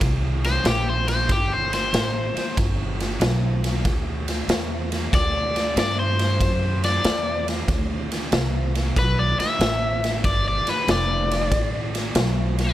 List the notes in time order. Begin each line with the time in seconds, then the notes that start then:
0.01 C2, kick, snare, ride
0.44 C5, snare, ride
0.64 A#1 G4, snare, ride
0.90 C5
1.08 C5, snare, ride
1.29 G1 G4, kick, snare, ride
1.54 C5
1.73 C5, snare, ride
1.93 A1, snare, ride
2.36 muted upright bass stroke, snare, ride
2.57 G1, kick, snare, ride
3.00 snare, ride
3.20 B1, snare, ride
3.64 snare, ride
3.85 D2, kick, snare, ride
4.28 snare, ride
4.48 E2, snare, ride
4.92 snare, ride
5.13 D2 D5, kick, snare, ride
5.56 snare, ride
5.76 G2 D5, snare, ride
6.00 C5
6.19 snare, ride
6.41 F#2, kick, snare, ride
6.84 D5, snare, ride
7.04 E2, snare, ride
7.48 snare, ride
7.68 D2, kick, snare, ride
8.12 snare, ride
8.32 C2, snare, ride
8.75 snare, ride
8.96 B1 B4, kick, snare, ride
9.19 D5
9.39 E5, muted upright bass stroke, snare, ride
9.59 A1, snare, ride
10.04 snare, ride
10.24 G1 D5, kick, snare, ride
10.48 D5
10.66 B4, muted upright bass stroke, snare, ride
10.88 F1 D5, snare, ride
11.31 snare, ride
11.51 A1, kick, snare, ride
11.95 snare, ride
12.15 B1, snare, ride
12.59 snare, ride